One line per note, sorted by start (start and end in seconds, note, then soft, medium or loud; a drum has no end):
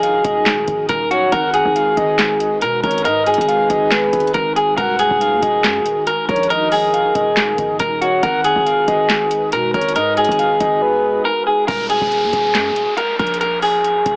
0.00 0.21 A#1 loud
0.00 1.29 D#3 medium
0.00 8.19 D#4 medium
0.00 1.29 F#4 medium
0.00 0.85 G#4 medium
0.00 1.29 A#4 medium
0.00 0.23 F5 medium
0.00 closed hi-hat medium
0.24 0.66 D#1 loud
0.24 0.45 D#5 medium
0.24 kick loud
0.24 closed hi-hat medium
0.46 snare loud
0.46 clap loud
0.46 closed hi-hat medium
0.68 0.88 C#1 loud
0.68 kick medium
0.68 closed hi-hat medium
0.89 1.31 D#1 loud
0.89 1.09 A#4 medium
0.89 kick medium
0.89 closed hi-hat medium
1.11 1.30 F#4 medium
1.11 1.31 C#5 medium
1.11 closed hi-hat medium
1.32 1.64 G#1 loud
1.32 4.74 G#3 medium
1.32 8.19 F#4 medium
1.32 1.52 A#4 loud
1.32 4.74 B4 medium
1.32 1.73 F#5 loud
1.32 kick loud
1.32 closed hi-hat medium
1.54 2.58 G#4 medium
1.54 closed hi-hat medium
1.65 1.96 G#1 loud
1.65 kick medium
1.76 1.96 F5 medium
1.76 closed hi-hat medium
1.97 2.63 G#1 loud
1.97 2.18 D#5 medium
1.97 kick loud
1.97 closed hi-hat medium
2.19 snare loud
2.19 clap medium
2.19 closed hi-hat medium
2.40 closed hi-hat medium
2.62 2.82 B2 loud
2.62 2.82 A#4 medium
2.62 closed hi-hat medium
2.83 3.07 G#1 loud
2.83 3.03 A#4 medium
2.83 3.04 C#5 medium
2.83 kick medium
2.83 closed hi-hat soft
2.91 closed hi-hat medium
2.98 closed hi-hat medium
3.05 3.36 G#2 loud
3.05 3.25 A#4 loud
3.05 3.46 D#5 loud
3.05 closed hi-hat medium
3.26 4.31 G#4 medium
3.26 closed hi-hat medium
3.26 open hi-hat medium
3.34 closed hi-hat medium
3.38 3.69 G#1 loud
3.38 kick medium
3.38 closed hi-hat medium
3.48 3.69 F5 medium
3.48 closed hi-hat medium
3.70 4.11 G#1 loud
3.70 3.90 D#5 medium
3.70 kick loud
3.70 closed hi-hat medium
3.91 4.32 B4 medium
3.91 snare loud
3.91 clap loud
3.91 closed hi-hat medium
4.13 4.34 G#1 loud
4.13 kick medium
4.13 closed hi-hat medium
4.20 closed hi-hat medium
4.27 closed hi-hat medium
4.34 4.76 G#1 loud
4.34 4.54 A#4 loud
4.34 kick medium
4.34 closed hi-hat medium
4.56 4.76 G#4 medium
4.56 closed hi-hat medium
4.77 5.09 D#1 loud
4.77 8.20 D#3 medium
4.77 4.97 A#4 loud
4.77 8.20 A#4 medium
4.77 5.18 F#5 loud
4.77 kick loud
4.77 closed hi-hat medium
4.99 6.03 G#4 medium
4.99 closed hi-hat medium
5.11 5.34 D#1 loud
5.11 kick medium
5.21 5.41 F5 medium
5.21 closed hi-hat medium
5.32 5.42 D#2 loud
5.42 5.65 D#1 loud
5.42 5.63 D#5 medium
5.42 kick loud
5.42 closed hi-hat medium
5.64 5.82 F#2 medium
5.64 snare loud
5.64 clap loud
5.64 closed hi-hat medium
5.80 5.96 D#1 loud
5.86 closed hi-hat medium
6.07 6.27 A#4 medium
6.07 closed hi-hat medium
6.29 7.12 A#1 loud
6.29 6.48 A#4 medium
6.29 6.49 C#5 medium
6.29 kick loud
6.29 closed hi-hat soft
6.36 closed hi-hat medium
6.43 closed hi-hat medium
6.50 6.70 A#4 loud
6.50 6.91 D#5 loud
6.50 closed hi-hat medium
6.72 7.76 G#4 medium
6.72 open hi-hat medium
6.93 7.14 F5 medium
6.93 closed hi-hat medium
7.15 7.57 D#1 loud
7.15 7.36 D#5 medium
7.15 kick loud
7.15 closed hi-hat medium
7.37 snare loud
7.37 clap medium
7.37 closed hi-hat medium
7.58 7.79 C#1 loud
7.58 kick medium
7.58 closed hi-hat medium
7.79 8.21 D#1 loud
7.79 7.99 A#4 loud
7.79 kick loud
7.79 closed hi-hat medium
8.01 8.21 F#4 medium
8.01 8.22 C#5 medium
8.01 closed hi-hat medium
8.23 8.55 G#1 loud
8.23 11.65 G#3 medium
8.23 11.65 D#4 medium
8.23 11.65 F#4 medium
8.23 8.42 A#4 loud
8.23 11.65 B4 medium
8.23 8.64 F#5 loud
8.23 kick loud
8.23 closed hi-hat medium
8.44 9.48 G#4 medium
8.44 closed hi-hat medium
8.56 8.87 G#1 loud
8.56 kick medium
8.66 8.87 F5 medium
8.66 closed hi-hat medium
8.88 9.54 G#1 loud
8.88 9.08 D#5 medium
8.88 kick loud
8.88 closed hi-hat medium
9.09 snare loud
9.09 clap medium
9.09 closed hi-hat medium
9.31 closed hi-hat medium
9.52 9.73 B2 loud
9.52 9.72 A#4 medium
9.52 closed hi-hat medium
9.74 9.97 G#1 loud
9.74 9.94 A#4 medium
9.74 9.95 C#5 medium
9.74 kick medium
9.74 closed hi-hat soft
9.81 closed hi-hat medium
9.89 closed hi-hat medium
9.96 10.27 G#2 loud
9.96 10.15 A#4 loud
9.96 10.36 D#5 loud
9.96 closed hi-hat medium
10.17 11.21 G#4 medium
10.17 closed hi-hat medium
10.17 open hi-hat medium
10.25 closed hi-hat medium
10.29 10.59 G#1 loud
10.29 kick medium
10.29 closed hi-hat medium
10.39 10.59 F5 medium
10.39 closed hi-hat medium
10.60 10.81 G#1 loud
10.60 10.81 D#5 medium
10.60 kick loud
10.60 closed hi-hat medium
10.82 11.23 B4 medium
11.25 11.45 A#4 loud
11.47 11.66 G#4 medium
11.68 12.00 D#1 loud
11.68 11.88 A#4 loud
11.68 kick loud
11.68 closed hi-hat medium
11.68 downlifter medium
11.90 12.94 G#4 medium
11.90 closed hi-hat medium
12.01 12.24 D#1 loud
12.01 kick medium
12.12 closed hi-hat medium
12.23 12.33 D#2 loud
12.33 12.56 D#1 loud
12.33 kick medium
12.33 closed hi-hat medium
12.55 12.73 F#2 loud
12.55 snare loud
12.55 clap medium
12.55 closed hi-hat medium
12.71 12.87 D#1 loud
12.76 closed hi-hat medium
12.97 13.17 A#4 medium
12.97 closed hi-hat medium
13.19 14.02 A#1 loud
13.19 13.39 A#4 medium
13.19 kick medium
13.19 closed hi-hat soft
13.27 closed hi-hat medium
13.34 closed hi-hat medium
13.41 13.60 A#4 loud
13.41 closed hi-hat medium
13.62 14.16 G#4 medium
13.62 open hi-hat medium
13.84 closed hi-hat medium
14.06 14.16 D#1 loud
14.06 kick loud
14.06 closed hi-hat medium